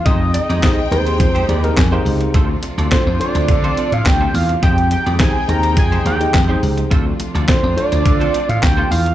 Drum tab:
HH |x-xxx-xxxxxxx-ox|x-xxx-xxxxxxx-ox|xxxxx-xxxxxxx-ox|x-xxx-xxxxxxx-ox|
CP |----x-------x---|----x-------x---|----x-------x---|----x-------x---|
SD |----o-------o---|----o-------o---|----o-------o---|----o-------o---|
BD |o---o---o---o---|o---o---o---o---|o---o---o---o---|o---o---o---o---|